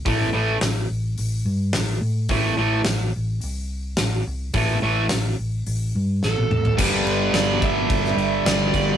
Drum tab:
CC |----------------|----------------|----------------|x-x-x-x-x-x-x-x-|
HH |o---o---o---o---|o---o---o---o---|o---o---o-------|----------------|
SD |----o-------o---|----o-------o---|----o-------o---|----o----o--o---|
T1 |----------------|----------------|-------------o--|----------------|
T2 |----------------|----------------|--------------o-|----------------|
FT |----------------|----------------|---------------o|----------------|
BD |o---------------|o---------------|o---------------|o-----o-o-----o-|